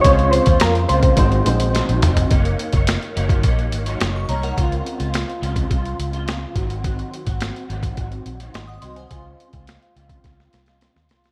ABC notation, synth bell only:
X:1
M:4/4
L:1/16
Q:1/4=106
K:Db
V:1 name="Synth bell"
z16 | z12 z d' [db] [Bg]- | [Bg] z12 z3 | z12 [ec'] [ge'] [ec'] [ca]- |
[ca] z12 z3 |]